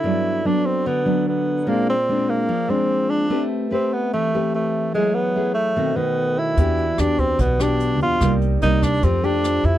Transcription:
<<
  \new Staff \with { instrumentName = "Vibraphone" } { \time 4/4 \key g \major \tempo 4 = 147 <fis' a' b' d''>1 | <bes f' aes' c'' d''>1 | <a g' b' e''>2. <a g' b' e''>4 | <fis gis' cis'' e''>2 <fis' a' c'' dis''>2 |
<fis' g' b' d''>2~ <fis' g' b' d''>8 <g' b' d''>4. | <ees' g' bes' d''>2 <f' g' a' c''>2 | }
  \new Staff \with { instrumentName = "Tenor saxophone" } { \time 4/4 \key g \major e'4 d'8 c'8 b4 b4 | bes8 c'4 bes4 c'4 d'8~ | d'8 r8 c'8 b8 a4 a4 | gis8 b4 a4 b4 e'8~ |
e'4 d'8 c'8 b8 d'4 f'8~ | f'8 r8 ees'8 d'8 c'8 d'4 e'8 | }
  \new Staff \with { instrumentName = "Nylon-string guitar" } { \time 4/4 \key g \major << { <fis b d'>4 <fis b d'>4. <fis b d'>4. | <aes c' d'>8 r8 <aes c' d'>4 r8 <aes c' d'>4. | <c' g' b'>4 <c' g' b'>4. <c' g' b'>4. | <a e' gis'>4 <a e' gis'>4 <dis a c'>8 <dis a>4. |
<b d' g'>8 r8 <b d' g'>4 r8 <b d' g'>4. | <g bes ees'>4 <g bes ees'>4 <a ees' g'>8 <a g'>4. | } \\ { g,2 d2 | bes,2 f2 | a2 e2 | fis2 b,2 |
e2 b,2 | c2 f2 | } >> }
  \new Staff \with { instrumentName = "Upright bass" } { \clef bass \time 4/4 \key g \major r1 | r1 | r1 | r1 |
e,4 e,4 b,,4. e,8 | c,4 c,4 f,4. f,8 | }
  \new DrumStaff \with { instrumentName = "Drums" } \drummode { \time 4/4 r4 r4 r4 r4 | r4 r4 r4 r4 | r4 r4 r4 r4 | r4 r4 r4 r4 |
<hh bd>8 hh8 <hh ss>8 <hh bd>8 <hh bd>8 <hh ss>8 hh8 hh8 | <hh bd ss>8 hh8 hh8 <hh bd ss>8 <hh bd>8 hh8 <hh ss>8 hh8 | }
>>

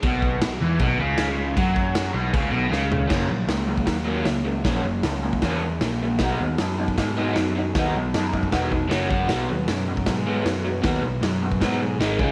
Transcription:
<<
  \new Staff \with { instrumentName = "Overdriven electric guitar" } { \time 4/4 \key b \major \tempo 4 = 155 b,4 b,8 e8 b,8 cis4. | fis4. b,8 cis8 b,8 cis4 | <fis ais cis'>8 <fis ais>8 <fis ais>8 <fis ais>8 <fis ais>8 <fis ais cis'>8 <fis ais>8 <fis ais>8 | <fis ais cis'>8 <fis ais>8 <fis ais>8 <fis ais>8 <fis ais cis'>8 <fis ais>8 <fis ais>8 <fis ais>8 |
<b dis' fis'>8 <b dis'>8 <b dis'>8 <b dis'>8 <b dis'>8 <b dis' fis'>8 <b dis'>8 <b dis'>8 | <b dis' fis'>8 <b dis'>8 <b dis'>8 <b dis'>8 <b dis' fis'>8 <b dis'>8 <fis cis' fis'>8 <fis cis' fis'>8 | <b, fis b>8 <b, fis>8 <b, fis>8 <b, fis>8 <b, fis>8 <b, fis b>8 <b, fis>8 <b, fis>8 | <b, fis b>8 <b, fis>8 <b, fis>8 <b, fis>8 <b, fis b>8 <b, fis>8 <gis, dis gis>8 <cis gis cis'>8 | }
  \new Staff \with { instrumentName = "Picked electric bass" } { \clef bass \time 4/4 \key b \major b,,4 b,,8 e,8 b,,8 cis,4. | fis,4. b,,8 cis,8 b,,8 cis,4 | fis,,8 ais,,8 cis,4 dis,4 cis,4 | ais,,8 fis,,8 cis,4 e,4 ais,,4 |
b,,8 dis,8 fis,4 gis,4 fis,4 | dis,8 b,,8 fis,4 e,,4 fis,,8 fis,,8 | b,,8 dis,8 fis,4 gis,4 fis,4 | dis,8 b,,8 fis,4 gis,4 gis,,8 cis,8 | }
  \new DrumStaff \with { instrumentName = "Drums" } \drummode { \time 4/4 <cymc bd>8 bd8 <cymc sn>4 <cymc bd>4 <cymc sn>4 | <cymc bd>8 bd8 <cymc sn>4 <cymc bd>4 sn8 tomfh8 | <cymc bd sn>4 <hho sn>8. bd16 <hho bd sn>4 <hho sn>4 | <hho bd sn>4 <hho sn>8. bd16 <hho bd sn>4 <hho sn>4 |
<hho bd sn>4 <hho sn>8. bd16 <hho bd sn>4 <hho sn>4 | <hho bd sn>4 <hho sn>8 bd16 bd16 <hho bd sn>8 bd8 <hho sn>8 bd8 | <hho sn>4 <hho sn>8. bd16 <hho bd sn>4 <hho sn>4 | <hho bd sn>4 <hho sn>8. bd16 <hho bd sn>4 <hho sn>8 bd8 | }
>>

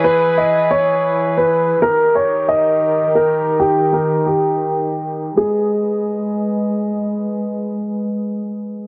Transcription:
<<
  \new Staff \with { instrumentName = "Grand piano" } { \time 4/4 \key gis \minor \tempo 4 = 135 b'8. dis''8. cis''4. b'4 | ais'8. cis''8. dis''4. ais'4 | g'8. ais'8. g'2~ g'8 | gis'2. r4 |
r1 | }
  \new Staff \with { instrumentName = "String section" } { \time 4/4 \key gis \minor <e e' gis' b'>1 | <dis dis' g' ais'>1~ | <dis dis' g' ais'>1 | <gis gis' b' dis''>1~ |
<gis gis' b' dis''>1 | }
>>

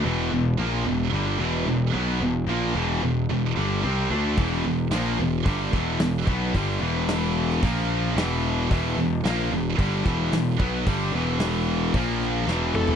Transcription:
<<
  \new Staff \with { instrumentName = "Lead electric guitar" } { \time 4/4 \key e \phrygian \tempo 4 = 111 r1 | r1 | r1 | r1 |
r1 | r2. r8 a'8 | }
  \new Staff \with { instrumentName = "Distorted electric guitar" } { \clef bass \time 4/4 \key e \phrygian <e, b, e>8 <e, b,>8 <ais, f ais>8 <e, b,>8 <g, d g>8 <e, b, e>8 <e, b,>8 <b, fis b>8 | <e, b,>8 <ais, f ais>8 <e, b, e>8 <e, b,>8 <e, b,>8 <g, d g>8 <c g c'>8 <d a d'>8 | <e, b, e>8 <e, b,>8 <ais, f ais>8 <e, b,>8 <g, d g>8 <e, b, e>8 <e, b,>8 <b, fis b>8 | <g, d g>8 <e, b, e>4. <ais, eis ais>4 <e, b, e>4 |
<e, b, e>8 <e, b,>8 <ais, f ais>8 <e, b,>8 <g, d g>8 <e, b, e>8 <e, b,>8 <b, fis b>8 | <g, d g>8 <e, b, e>4. <ais, eis ais>4 <e, b, e>4 | }
  \new Staff \with { instrumentName = "Distorted electric guitar" } { \clef bass \time 4/4 \key e \phrygian <e, b, e>8 <e, b,>8 <ais, f ais>8 <e, b,>8 <g, d g>8 <e, b, e>8 <e, b,>8 <b, fis b>8 | <e, b,>8 <ais, f ais>8 <e, b, e>8 <e, b,>8 <e, b,>8 <g, d g>8 <c g c'>8 <d a d'>8 | <e, b, e>8 <e, b,>8 <ais, f ais>8 <e, b,>8 <g, d g>8 <e, b, e>8 <e, b,>8 <b, fis b>8 | <g, d g>8 <e, b, e>4. <ais, eis ais>4 <e, b, e>4 |
<e, b, e>8 <e, b,>8 <ais, f ais>8 <e, b,>8 <g, d g>8 <e, b, e>8 <e, b,>8 <b, fis b>8 | <g, d g>8 <e, b, e>4. <ais, eis ais>4 <e, b, e>4 | }
  \new Staff \with { instrumentName = "Picked electric bass" } { \clef bass \time 4/4 \key e \phrygian e,,8 e,,8 ais,,8 e,,8 g,,8 e,,8 e,,8 b,,8 | e,,8 ais,,8 e,,8 e,,8 e,,8 g,,8 c,8 d,8 | e,,8 e,,8 ais,,8 e,,8 g,,8 e,,8 e,,8 b,,8 | g,,8 e,,4. ais,,4 e,,4 |
e,,8 e,,8 ais,,8 e,,8 g,,8 e,,8 e,,8 b,,8 | g,,8 e,,4. ais,,4 e,,4 | }
  \new DrumStaff \with { instrumentName = "Drums" } \drummode { \time 4/4 r4 r4 r4 r4 | r4 r4 r4 r4 | <hho bd>4 <hho sn>4 <hho bd>8 <bd sn>8 <hho sn>8 bd8 | <hho bd>4 <hho sn>8. sn16 <hho bd>4 <hho sn>4 |
<hho bd>4 <hho sn>4 <hho bd>8 <bd sn>8 <hho sn>8 bd8 | <hho bd>4 <hho sn>4 <hho bd>8 sn8 sn8 toml16 tomfh16 | }
>>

